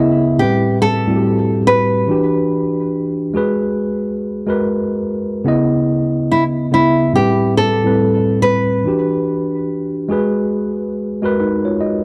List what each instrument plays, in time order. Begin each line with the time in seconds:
Already playing: tine electric piano C#3 B3 A#4 F#5, nylon-string guitar E4
0.00 tine electric piano E4 D#5
0.38 tine electric piano A2 G3 C4 B4, nylon-string guitar G4
0.82 nylon-string guitar A4
1.07 tine electric piano A2 G3 C4 F#4
1.17 tine electric piano G4
1.67 nylon-string guitar B4
2.08 tine electric piano E3 D4 F#4 G4
3.34 tine electric piano G#3 F#4 G#4 B4
4.46 tine electric piano G#3 F#4 A#4 B4
5.44 tine electric piano C#3 B3 E4 D#5
6.32 nylon-string guitar E4
6.71 tine electric piano C#3 B3 E4 E5, nylon-string guitar E4
7.13 tine electric piano A2 G3 C4 B4, nylon-string guitar G4
7.57 nylon-string guitar A4
7.83 tine electric piano A2 G3 C4 B4
8.42 nylon-string guitar B4
8.84 tine electric piano E3 D4 F#4 G4
10.08 tine electric piano G#3 F#4 G#4 B4
11.22 tine electric piano G#3 F#4 A#4 B4
11.40 tine electric piano D#4 B4
11.65 tine electric piano F4 C#5
11.80 tine electric piano F#4 D#5